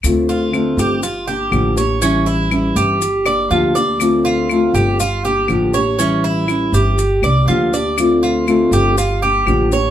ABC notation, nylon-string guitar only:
X:1
M:4/4
L:1/8
Q:1/4=121
K:Dm
V:1 name="Nylon-string guitar"
[D,A,CF]2 [D,A,CF]2 z [B,DG] [D,F,B,DG] [B,DG] | [E,G,^CE]2 [E,G,CE]2 z [B,DG] [D,F,B,DG] [B,DG] | [D,A,CF]2 [D,A,CF]2 z [B,DG] [D,F,B,DG] [B,DG] | [E,G,^CE]2 [E,G,CE]2 z [B,DG] [D,F,B,DG] [B,DG] |
[D,A,CF]2 [D,A,CF]2 z [B,DG] [D,F,B,DG] [B,DG] |]